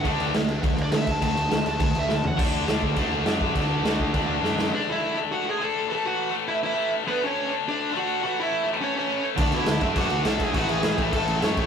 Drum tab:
CC |xxxxxxxx|xxxxxx--|x-x-x-x-|x-x-x---|
SD |--o---o-|--o---o-|--o---o-|--o---oo|
FT |--------|-------o|--------|--------|
BD |o---o--o|o---o---|o--oo--o|o--oo---|

CC |--------|--------|--------|--------|
SD |--------|--------|--------|--------|
FT |--------|--------|--------|--------|
BD |--------|--------|--------|--------|

CC |xxxxxxxx|xxxxxxxx|
SD |--o---o-|--o---o-|
FT |--------|--------|
BD |o--oo--o|o--oo--o|